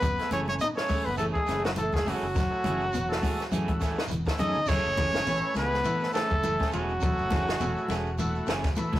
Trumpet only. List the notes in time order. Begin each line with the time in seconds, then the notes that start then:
Already playing: B4
0.33 C#5
0.49 C#5
0.61 D#5
0.76 C#5
1.05 B4
1.18 A4
1.33 G#4
1.65 F#4
1.78 A4
1.94 G#4
2.09 F#4
4.40 D#5
4.68 C#5
5.57 B4
6.14 A4
6.74 F#4